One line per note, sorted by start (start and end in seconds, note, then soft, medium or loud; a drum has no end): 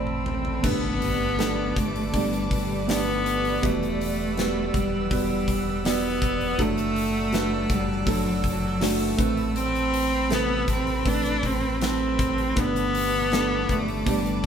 0.00 0.59 A1 medium
0.00 0.62 A3 medium
0.00 0.60 C4 medium
0.00 0.66 C4 medium
0.00 0.67 C4 medium
0.00 0.65 E4 medium
0.00 0.65 A4 medium
0.00 0.63 B4 medium
0.00 0.65 C5 medium
0.00 0.63 D5 medium
0.00 0.60 A5 medium
0.00 0.60 B5 medium
0.00 0.59 E6 medium
0.07 mid tom medium
0.26 floor tom medium
0.45 floor tom medium
0.62 1.72 G1 loud
0.62 1.72 G2 medium
0.62 1.34 A3 medium
0.62 1.34 B3 medium
0.62 1.80 B3 loud
0.62 1.34 D4 medium
0.62 1.35 G4 medium
0.62 1.35 B4 medium
0.62 6.55 B4 medium
0.62 6.56 D5 medium
0.62 3.60 A5 medium
0.62 3.60 D6 medium
0.62 kick loud
0.62 crash medium
0.62 impact medium
1.01 hi-hat pedal medium
1.01 open hi-hat medium
1.37 2.09 A3 medium
1.37 2.09 B3 medium
1.37 2.09 D4 medium
1.37 2.10 G4 medium
1.37 2.10 A4 medium
1.37 snare loud
1.37 hi-hat pedal medium
1.37 open hi-hat medium
1.76 2.11 G1 loud
1.76 2.18 A3 medium
1.76 kick medium
1.76 hi-hat pedal medium
1.76 open hi-hat medium
1.96 open hi-hat soft
2.12 3.59 G1 loud
2.12 2.84 A3 medium
2.12 2.84 B3 medium
2.12 2.84 D4 medium
2.12 2.84 G4 medium
2.12 2.85 D5 medium
2.12 kick medium
2.12 hi-hat pedal medium
2.12 open hi-hat medium
2.17 2.52 G3 medium
2.32 hi-hat pedal medium
2.51 2.92 G3 medium
2.51 kick medium
2.51 hi-hat pedal medium
2.51 open hi-hat medium
2.86 3.58 A3 medium
2.86 3.58 B3 medium
2.86 3.59 D4 medium
2.86 3.59 G4 medium
2.86 3.59 D5 medium
2.86 snare loud
2.86 hi-hat pedal medium
2.86 open hi-hat loud
2.91 3.67 B3 loud
3.26 hi-hat pedal medium
3.26 open hi-hat medium
3.45 open hi-hat soft
3.62 4.70 E1 loud
3.62 4.70 E3 medium
3.62 4.33 G3 medium
3.62 4.78 A3 loud
3.62 4.33 B3 medium
3.62 4.33 E4 medium
3.62 4.33 F#4 medium
3.62 4.34 B4 medium
3.62 9.15 F#5 medium
3.62 12.53 E6 medium
3.62 kick loud
3.62 hi-hat pedal medium
3.62 open hi-hat loud
3.82 hi-hat pedal medium
4.01 hi-hat pedal medium
4.01 open hi-hat medium
4.36 5.07 G3 medium
4.36 5.07 B3 medium
4.36 5.07 E4 medium
4.36 5.07 F#4 medium
4.36 5.08 B4 medium
4.36 snare loud
4.36 hi-hat pedal medium
4.36 open hi-hat medium
4.74 5.09 E1 loud
4.74 5.12 G3 medium
4.74 kick medium
4.74 hi-hat pedal medium
4.74 open hi-hat medium
5.10 6.55 E1 loud
5.10 5.81 G3 medium
5.10 5.82 G3 loud
5.10 5.81 B3 medium
5.10 5.81 E4 medium
5.10 5.82 F#4 medium
5.10 5.82 B4 medium
5.10 kick medium
5.10 hi-hat pedal medium
5.10 open hi-hat medium
5.48 kick medium
5.48 hi-hat pedal medium
5.48 open hi-hat medium
5.84 6.55 G3 medium
5.84 6.55 B3 medium
5.84 6.63 B3 loud
5.84 6.56 E4 medium
5.84 6.56 F#4 medium
5.84 6.56 D5 medium
5.84 snare loud
5.84 hi-hat pedal medium
5.84 open hi-hat loud
6.22 kick loud
6.22 hi-hat pedal medium
6.22 open hi-hat medium
6.41 open hi-hat soft
6.58 7.66 F#1 loud
6.58 7.29 F#3 medium
6.58 7.29 A3 medium
6.58 7.75 A3 loud
6.58 7.29 D4 medium
6.58 7.29 E4 medium
6.58 7.30 A4 medium
6.58 9.16 D5 medium
6.58 12.53 A5 medium
6.58 kick medium
6.58 hi-hat pedal medium
6.58 open hi-hat medium
6.77 hi-hat pedal medium
6.96 hi-hat pedal medium
6.96 open hi-hat medium
7.32 8.03 A3 medium
7.32 8.04 D4 medium
7.32 8.04 E4 medium
7.32 8.03 F#4 medium
7.32 8.04 B4 medium
7.32 snare loud
7.32 hi-hat pedal medium
7.32 open hi-hat medium
7.70 8.04 F#1 loud
7.70 8.12 G3 medium
7.70 kick medium
7.70 hi-hat pedal medium
7.70 open hi-hat medium
8.06 9.15 F#1 loud
8.06 8.77 F#3 medium
8.06 8.78 A3 medium
8.06 8.78 D4 medium
8.06 8.78 E4 medium
8.06 8.78 A4 medium
8.06 kick loud
8.06 hi-hat pedal medium
8.06 open hi-hat medium
8.10 8.46 F#3 medium
8.44 8.86 F#3 medium
8.44 kick medium
8.44 hi-hat pedal medium
8.44 open hi-hat medium
8.81 9.18 F#3 medium
8.81 9.15 A3 medium
8.81 9.58 A3 loud
8.81 9.19 D4 medium
8.81 9.17 E4 medium
8.81 9.19 F#4 medium
8.81 snare loud
8.81 hi-hat pedal medium
8.81 open hi-hat loud
9.17 10.64 A1 loud
9.17 10.26 A2 medium
9.17 10.24 A3 medium
9.17 10.25 C4 medium
9.17 10.25 E4 medium
9.17 12.53 B4 medium
9.17 10.25 B4 medium
9.17 12.53 B5 medium
9.17 kick loud
9.17 hi-hat pedal medium
9.17 open hi-hat medium
9.37 open hi-hat soft
9.56 10.35 C4 loud
9.56 hi-hat pedal medium
9.56 open hi-hat medium
9.75 hi-hat pedal medium
9.93 hi-hat pedal medium
9.93 open hi-hat medium
10.29 11.01 C3 medium
10.29 11.01 A3 medium
10.29 11.02 E4 medium
10.29 11.02 A4 medium
10.29 11.01 B4 medium
10.29 snare loud
10.29 hi-hat pedal medium
10.29 open hi-hat medium
10.34 10.70 B3 loud
10.68 11.03 A1 loud
10.68 11.09 C4 medium
10.68 kick medium
10.68 hi-hat pedal medium
10.68 open hi-hat medium
10.87 open hi-hat soft
11.05 12.53 A1 loud
11.05 11.77 A3 medium
11.05 11.77 C4 medium
11.05 11.48 D4 loud
11.05 11.78 E4 medium
11.05 11.78 B4 medium
11.05 kick loud
11.05 hi-hat pedal medium
11.05 open hi-hat medium
11.24 hi-hat pedal medium
11.43 11.83 C4 loud
11.43 kick medium
11.43 hi-hat pedal medium
11.43 open hi-hat medium
11.80 12.52 A3 medium
11.80 12.53 C4 medium
11.80 12.53 E4 medium
11.80 12.53 B4 medium
11.80 snare loud
11.80 hi-hat pedal medium
11.80 open hi-hat loud
11.84 12.61 C4 loud
12.19 kick medium
12.19 hi-hat pedal medium
12.19 open hi-hat medium
12.38 open hi-hat soft
12.54 13.65 G1 loud
12.54 13.65 G2 medium
12.54 13.27 A3 medium
12.54 13.27 B3 medium
12.54 13.28 D4 medium
12.54 13.28 G4 medium
12.54 13.28 B4 medium
12.54 14.46 B4 medium
12.54 14.46 D5 medium
12.54 14.46 A5 medium
12.54 14.46 D6 medium
12.54 kick loud
12.54 hi-hat pedal medium
12.54 open hi-hat medium
12.60 13.74 B3 loud
12.75 hi-hat pedal medium
12.94 hi-hat pedal medium
12.94 open hi-hat medium
13.31 14.02 A3 medium
13.31 14.03 B3 medium
13.31 14.03 D4 medium
13.31 14.03 G4 medium
13.31 14.03 A4 medium
13.31 snare loud
13.31 hi-hat pedal medium
13.31 open hi-hat medium
13.69 14.04 G1 loud
13.69 14.11 A3 loud
13.69 kick medium
13.69 hi-hat pedal medium
13.69 open hi-hat medium
13.88 open hi-hat soft
14.05 14.46 G1 loud
14.05 14.46 A3 medium
14.05 14.46 B3 medium
14.05 14.46 D4 medium
14.05 14.46 G4 medium
14.05 14.46 D5 medium
14.05 kick loud
14.05 hi-hat pedal medium
14.05 open hi-hat medium
14.10 14.45 G3 medium
14.25 hi-hat pedal medium